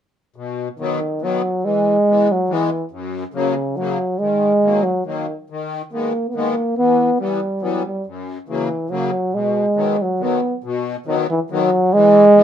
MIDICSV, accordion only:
0, 0, Header, 1, 2, 480
1, 0, Start_track
1, 0, Key_signature, 5, "major"
1, 0, Tempo, 428266
1, 405, Time_signature, 3, 2, 24, 8
1, 13937, End_track
2, 0, Start_track
2, 0, Title_t, "Accordion"
2, 0, Program_c, 0, 21
2, 404, Note_on_c, 0, 47, 50
2, 768, Note_off_c, 0, 47, 0
2, 889, Note_on_c, 0, 51, 53
2, 897, Note_on_c, 0, 54, 43
2, 899, Note_on_c, 0, 59, 61
2, 1114, Note_off_c, 0, 51, 0
2, 1118, Note_off_c, 0, 54, 0
2, 1119, Note_off_c, 0, 59, 0
2, 1361, Note_on_c, 0, 51, 55
2, 1367, Note_on_c, 0, 54, 51
2, 1369, Note_on_c, 0, 59, 60
2, 1590, Note_off_c, 0, 51, 0
2, 1593, Note_off_c, 0, 54, 0
2, 1594, Note_off_c, 0, 59, 0
2, 1833, Note_on_c, 0, 52, 45
2, 2200, Note_off_c, 0, 52, 0
2, 2333, Note_on_c, 0, 52, 45
2, 2340, Note_on_c, 0, 56, 47
2, 2352, Note_on_c, 0, 59, 51
2, 2554, Note_off_c, 0, 52, 0
2, 2558, Note_off_c, 0, 56, 0
2, 2563, Note_off_c, 0, 59, 0
2, 2785, Note_on_c, 0, 52, 61
2, 2797, Note_on_c, 0, 56, 47
2, 2802, Note_on_c, 0, 59, 53
2, 3019, Note_off_c, 0, 52, 0
2, 3025, Note_off_c, 0, 56, 0
2, 3027, Note_off_c, 0, 59, 0
2, 3265, Note_on_c, 0, 42, 60
2, 3630, Note_off_c, 0, 42, 0
2, 3740, Note_on_c, 0, 49, 50
2, 3746, Note_on_c, 0, 54, 50
2, 3755, Note_on_c, 0, 58, 59
2, 3972, Note_off_c, 0, 49, 0
2, 3975, Note_off_c, 0, 54, 0
2, 3980, Note_off_c, 0, 58, 0
2, 4238, Note_on_c, 0, 49, 51
2, 4249, Note_on_c, 0, 54, 45
2, 4253, Note_on_c, 0, 58, 55
2, 4460, Note_off_c, 0, 49, 0
2, 4465, Note_off_c, 0, 54, 0
2, 4468, Note_off_c, 0, 58, 0
2, 4715, Note_on_c, 0, 51, 53
2, 5074, Note_off_c, 0, 51, 0
2, 5186, Note_on_c, 0, 51, 45
2, 5201, Note_on_c, 0, 54, 42
2, 5207, Note_on_c, 0, 58, 54
2, 5414, Note_off_c, 0, 51, 0
2, 5421, Note_off_c, 0, 54, 0
2, 5424, Note_off_c, 0, 58, 0
2, 5663, Note_on_c, 0, 51, 45
2, 5676, Note_on_c, 0, 58, 48
2, 5677, Note_on_c, 0, 54, 46
2, 5894, Note_off_c, 0, 51, 0
2, 5900, Note_off_c, 0, 58, 0
2, 5901, Note_off_c, 0, 54, 0
2, 6163, Note_on_c, 0, 51, 62
2, 6522, Note_off_c, 0, 51, 0
2, 6637, Note_on_c, 0, 51, 50
2, 6647, Note_on_c, 0, 56, 49
2, 6652, Note_on_c, 0, 59, 45
2, 6862, Note_off_c, 0, 51, 0
2, 6867, Note_off_c, 0, 56, 0
2, 6870, Note_off_c, 0, 59, 0
2, 7107, Note_on_c, 0, 51, 52
2, 7119, Note_on_c, 0, 56, 43
2, 7125, Note_on_c, 0, 59, 63
2, 7336, Note_off_c, 0, 51, 0
2, 7342, Note_off_c, 0, 56, 0
2, 7345, Note_off_c, 0, 59, 0
2, 7597, Note_on_c, 0, 52, 49
2, 7958, Note_off_c, 0, 52, 0
2, 8065, Note_on_c, 0, 55, 43
2, 8066, Note_on_c, 0, 52, 55
2, 8077, Note_on_c, 0, 59, 55
2, 8295, Note_off_c, 0, 55, 0
2, 8296, Note_off_c, 0, 52, 0
2, 8301, Note_off_c, 0, 59, 0
2, 8534, Note_on_c, 0, 52, 49
2, 8543, Note_on_c, 0, 59, 56
2, 8549, Note_on_c, 0, 55, 53
2, 8768, Note_off_c, 0, 52, 0
2, 8773, Note_off_c, 0, 59, 0
2, 8776, Note_off_c, 0, 55, 0
2, 9039, Note_on_c, 0, 42, 48
2, 9396, Note_off_c, 0, 42, 0
2, 9510, Note_on_c, 0, 49, 47
2, 9515, Note_on_c, 0, 54, 45
2, 9522, Note_on_c, 0, 58, 55
2, 9734, Note_off_c, 0, 49, 0
2, 9737, Note_off_c, 0, 54, 0
2, 9740, Note_off_c, 0, 58, 0
2, 9970, Note_on_c, 0, 49, 59
2, 9977, Note_on_c, 0, 54, 49
2, 9985, Note_on_c, 0, 58, 52
2, 10204, Note_off_c, 0, 49, 0
2, 10207, Note_off_c, 0, 54, 0
2, 10211, Note_off_c, 0, 58, 0
2, 10462, Note_on_c, 0, 47, 50
2, 10828, Note_off_c, 0, 47, 0
2, 10931, Note_on_c, 0, 51, 50
2, 10940, Note_on_c, 0, 54, 44
2, 10945, Note_on_c, 0, 59, 56
2, 11168, Note_off_c, 0, 51, 0
2, 11172, Note_off_c, 0, 54, 0
2, 11175, Note_off_c, 0, 59, 0
2, 11425, Note_on_c, 0, 51, 48
2, 11428, Note_on_c, 0, 54, 48
2, 11440, Note_on_c, 0, 59, 55
2, 11657, Note_off_c, 0, 51, 0
2, 11659, Note_off_c, 0, 54, 0
2, 11665, Note_off_c, 0, 59, 0
2, 11925, Note_on_c, 0, 47, 68
2, 12284, Note_off_c, 0, 47, 0
2, 12394, Note_on_c, 0, 51, 54
2, 12406, Note_on_c, 0, 54, 55
2, 12418, Note_on_c, 0, 59, 62
2, 12622, Note_off_c, 0, 51, 0
2, 12628, Note_off_c, 0, 54, 0
2, 12634, Note_off_c, 0, 59, 0
2, 12894, Note_on_c, 0, 51, 54
2, 12903, Note_on_c, 0, 54, 58
2, 12911, Note_on_c, 0, 59, 62
2, 13112, Note_off_c, 0, 51, 0
2, 13116, Note_off_c, 0, 54, 0
2, 13120, Note_off_c, 0, 59, 0
2, 13383, Note_on_c, 0, 52, 67
2, 13732, Note_off_c, 0, 52, 0
2, 13842, Note_on_c, 0, 52, 57
2, 13851, Note_on_c, 0, 56, 54
2, 13861, Note_on_c, 0, 59, 70
2, 13937, Note_off_c, 0, 52, 0
2, 13937, Note_off_c, 0, 56, 0
2, 13937, Note_off_c, 0, 59, 0
2, 13937, End_track
0, 0, End_of_file